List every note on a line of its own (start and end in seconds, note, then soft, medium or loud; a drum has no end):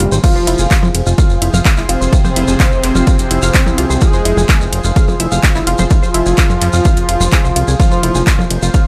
0.00 0.08 F1 loud
0.00 0.14 G2 loud
0.00 0.20 C#3 medium
0.00 0.14 G3 loud
0.00 0.20 A#3 medium
0.00 0.20 C#4 medium
0.00 0.06 F4 medium
0.00 0.06 F5 medium
0.00 closed hi-hat loud
0.12 0.19 G#1 medium
0.12 0.23 C5 medium
0.12 0.23 C6 medium
0.12 shekere medium
0.23 7.76 F3 medium
0.23 0.85 F3 loud
0.23 7.75 F4 medium
0.23 0.33 F4 medium
0.23 0.85 F4 loud
0.23 7.76 G#4 medium
0.23 7.75 C5 medium
0.23 0.33 F5 medium
0.23 kick loud
0.23 crash medium
0.23 ride medium
0.23 shekere medium
0.36 0.43 F1 medium
0.36 0.45 C5 medium
0.36 0.45 C6 medium
0.36 shekere soft
0.47 0.55 F1 loud
0.47 0.57 E4 medium
0.47 0.56 E5 medium
0.47 closed hi-hat loud
0.47 ride medium
0.58 0.67 F1 medium
0.58 0.70 G#4 medium
0.58 0.70 G#5 medium
0.58 shekere medium
0.71 0.82 F5 medium
0.71 0.82 F6 medium
0.71 kick loud
0.71 clap loud
0.71 ride medium
0.71 shekere medium
0.83 0.90 F1 medium
0.83 percussion blips loud
0.83 shekere soft
0.95 1.02 F1 loud
0.95 closed hi-hat loud
0.95 ride medium
1.06 1.14 F1 medium
1.06 1.18 F4 medium
1.06 1.17 F5 medium
1.06 shekere medium
1.18 1.27 F5 medium
1.18 1.27 F6 medium
1.18 kick loud
1.18 ride medium
1.18 shekere medium
1.30 1.38 F1 medium
1.30 shekere soft
1.42 1.49 F1 loud
1.42 1.51 E4 medium
1.42 1.51 E5 medium
1.42 closed hi-hat loud
1.42 ride medium
1.54 1.61 F1 medium
1.54 1.63 F5 medium
1.54 1.63 F6 medium
1.54 percussion blips medium
1.54 shekere medium
1.65 1.77 F5 medium
1.65 1.77 F6 medium
1.65 kick loud
1.65 clap loud
1.65 ride medium
1.65 shekere medium
1.77 1.85 G1 medium
1.77 1.86 E4 medium
1.77 1.86 E5 medium
1.77 clap soft
1.77 shekere soft
1.89 1.97 F1 loud
1.89 4.02 C3 loud
1.89 4.03 C4 loud
1.89 1.95 F4 medium
1.89 1.95 F5 medium
1.89 closed hi-hat loud
1.89 ride medium
2.01 2.08 F1 medium
2.01 2.12 C5 medium
2.01 2.12 C6 medium
2.01 shekere medium
2.13 2.22 F4 medium
2.13 2.22 F5 medium
2.13 kick loud
2.13 ride medium
2.13 shekere medium
2.25 2.32 F1 medium
2.25 2.34 C5 medium
2.25 2.34 C6 medium
2.25 percussion blips medium
2.25 shekere soft
2.36 2.44 F1 loud
2.36 2.46 E4 medium
2.36 2.45 E5 medium
2.36 closed hi-hat loud
2.36 ride medium
2.47 2.56 F1 medium
2.47 2.59 G#4 medium
2.47 2.59 G#5 medium
2.47 shekere medium
2.60 2.71 F5 medium
2.60 2.71 F6 medium
2.60 kick loud
2.60 clap loud
2.60 ride medium
2.60 shekere medium
2.71 2.79 F1 medium
2.71 shekere soft
2.84 2.91 F1 loud
2.84 clap soft
2.84 closed hi-hat loud
2.84 ride medium
2.95 3.03 F1 medium
2.95 3.07 F4 medium
2.95 3.06 F5 medium
2.95 percussion blips medium
2.95 shekere medium
3.07 3.16 F5 medium
3.07 3.16 F6 medium
3.07 kick loud
3.07 ride medium
3.07 shekere medium
3.19 3.26 F1 medium
3.19 closed hi-hat medium
3.19 shekere soft
3.31 3.38 F1 loud
3.31 3.40 E4 medium
3.31 3.40 E5 medium
3.31 closed hi-hat loud
3.31 ride medium
3.42 3.50 F1 medium
3.42 3.52 F5 medium
3.42 3.52 F6 medium
3.42 shekere medium
3.54 3.66 F5 medium
3.54 3.66 F6 medium
3.54 kick loud
3.54 clap loud
3.54 ride medium
3.54 shekere medium
3.66 3.74 C2 medium
3.66 3.75 E4 medium
3.66 3.75 E5 medium
3.66 percussion blips medium
3.66 shekere soft
3.78 3.86 C2 loud
3.78 3.84 F4 medium
3.78 3.84 F5 medium
3.78 closed hi-hat loud
3.78 ride medium
3.90 3.97 C2 medium
3.90 4.01 C5 medium
3.90 4.01 C6 medium
3.90 shekere medium
4.01 4.63 G#3 loud
4.01 4.11 F4 medium
4.01 4.63 G#4 loud
4.01 4.11 F5 medium
4.01 kick loud
4.01 ride medium
4.01 shekere medium
4.13 4.21 F1 medium
4.13 4.23 C5 medium
4.13 4.23 C6 medium
4.13 shekere soft
4.25 4.33 F1 loud
4.25 4.35 E4 medium
4.25 4.35 E5 medium
4.25 closed hi-hat loud
4.25 ride medium
4.37 4.45 F1 medium
4.37 4.48 G#4 medium
4.37 4.48 G#5 medium
4.37 percussion blips medium
4.37 shekere medium
4.49 4.60 F5 medium
4.49 4.60 F6 medium
4.49 kick loud
4.49 clap loud
4.49 ride medium
4.49 shekere medium
4.61 4.68 F1 medium
4.61 shekere soft
4.73 4.80 F1 loud
4.73 closed hi-hat loud
4.73 ride medium
4.84 4.92 F1 medium
4.84 4.96 F4 medium
4.84 4.95 F5 medium
4.84 shekere medium
4.96 5.05 F5 medium
4.96 5.05 F6 medium
4.96 kick loud
4.96 ride medium
4.96 shekere medium
5.08 5.15 F1 medium
5.08 percussion blips medium
5.08 shekere soft
5.20 5.27 F1 loud
5.20 5.29 E4 medium
5.20 5.29 E5 medium
5.20 closed hi-hat loud
5.20 ride medium
5.32 5.39 F1 medium
5.32 5.41 F5 medium
5.32 5.41 F6 medium
5.32 shekere medium
5.43 5.55 F5 medium
5.43 5.55 F6 medium
5.43 kick loud
5.43 clap loud
5.43 ride medium
5.43 shekere medium
5.55 5.63 G1 medium
5.55 5.64 E4 medium
5.55 5.64 E5 medium
5.55 clap soft
5.55 shekere soft
5.67 5.75 F1 loud
5.67 7.70 F3 loud
5.67 5.73 F4 medium
5.67 7.70 F4 loud
5.67 5.73 F5 medium
5.67 closed hi-hat loud
5.67 ride medium
5.78 5.86 F1 medium
5.78 5.90 C5 medium
5.78 5.90 C6 medium
5.78 percussion blips medium
5.78 shekere medium
5.90 6.00 F4 medium
5.90 6.00 F5 medium
5.90 kick loud
5.90 ride medium
5.90 shekere medium
6.03 6.10 F1 medium
6.03 6.12 C5 medium
6.03 6.12 C6 medium
6.03 shekere soft
6.14 6.22 F1 loud
6.14 6.23 E4 medium
6.14 6.23 E5 medium
6.14 closed hi-hat loud
6.14 ride medium
6.26 6.34 F1 medium
6.26 6.37 G#4 medium
6.26 6.37 G#5 medium
6.26 shekere medium
6.37 6.49 F5 medium
6.37 6.49 F6 medium
6.37 kick loud
6.37 clap loud
6.37 ride medium
6.37 shekere medium
6.50 6.57 F1 medium
6.50 percussion blips medium
6.50 shekere soft
6.62 6.69 F1 loud
6.62 clap soft
6.62 closed hi-hat loud
6.62 ride medium
6.73 6.81 F1 medium
6.73 6.85 F4 medium
6.73 6.84 F5 medium
6.73 shekere medium
6.85 6.94 F5 medium
6.85 6.94 F6 medium
6.85 kick loud
6.85 ride medium
6.85 shekere medium
6.97 7.04 F1 medium
6.97 closed hi-hat medium
6.97 shekere soft
7.09 7.16 F1 loud
7.09 7.14 F4 medium
7.09 7.14 F5 medium
7.09 closed hi-hat loud
7.09 ride medium
7.21 7.28 F1 medium
7.21 7.30 C5 medium
7.21 7.30 C6 medium
7.21 percussion blips medium
7.21 shekere medium
7.32 7.42 G#4 medium
7.32 7.42 G#5 medium
7.32 kick loud
7.32 clap loud
7.32 ride soft
7.32 shekere medium
7.44 7.52 C2 medium
7.44 7.53 C5 medium
7.44 7.53 C6 medium
7.44 shekere soft
7.56 7.64 C2 loud
7.56 7.65 F4 medium
7.56 7.65 F5 medium
7.56 closed hi-hat loud
7.56 ride medium
7.68 7.75 C2 medium
7.68 7.77 G#4 medium
7.68 7.77 G#5 medium
7.68 shekere medium
7.80 8.87 C#3 medium
7.80 8.41 F3 loud
7.80 8.87 A#3 medium
7.80 7.89 F4 medium
7.80 8.41 F4 loud
7.80 8.87 C5 medium
7.80 7.89 F5 medium
7.80 kick loud
7.80 ride medium
7.80 shekere medium
7.91 7.99 F1 medium
7.91 8.01 C5 medium
7.91 8.01 C6 medium
7.91 shekere soft
8.03 8.11 F1 loud
8.03 8.12 E4 medium
8.03 8.12 E5 medium
8.03 closed hi-hat loud
8.03 ride medium
8.15 8.23 F1 medium
8.15 8.26 G#4 medium
8.15 8.26 G#5 medium
8.15 shekere medium
8.27 8.38 F5 medium
8.27 8.38 F6 medium
8.27 kick loud
8.27 clap loud
8.27 ride medium
8.27 shekere medium
8.39 8.46 F1 medium
8.39 percussion blips medium
8.39 shekere soft
8.50 8.58 F1 loud
8.50 closed hi-hat loud
8.50 ride medium
8.62 8.70 F1 medium
8.62 8.74 F4 medium
8.62 8.73 F5 medium
8.62 shekere medium
8.74 8.83 F5 medium
8.74 8.83 F6 medium
8.74 kick loud
8.74 ride medium
8.74 shekere medium